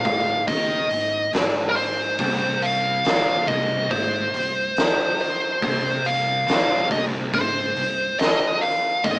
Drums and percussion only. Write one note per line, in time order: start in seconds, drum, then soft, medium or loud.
0.05 kick loud
0.05 open hi-hat medium
0.48 kick loud
0.48 open hi-hat medium
0.91 open hi-hat medium
1.33 snare loud
1.33 open hi-hat medium
1.76 open hi-hat medium
2.19 kick loud
2.19 open hi-hat medium
2.62 open hi-hat medium
3.05 snare loud
3.05 open hi-hat medium
3.48 kick loud
3.48 open hi-hat soft
3.91 kick loud
3.91 open hi-hat medium
4.34 open hi-hat medium
4.77 snare loud
4.77 open hi-hat medium
5.20 open hi-hat soft
5.62 kick loud
5.62 open hi-hat medium
6.05 open hi-hat medium
6.48 snare loud
6.48 open hi-hat medium
6.91 kick loud
6.91 open hi-hat medium
7.34 kick loud
7.34 open hi-hat medium
7.77 open hi-hat medium
8.19 snare loud
8.19 open hi-hat medium
8.62 open hi-hat medium
9.04 kick loud
9.04 open hi-hat medium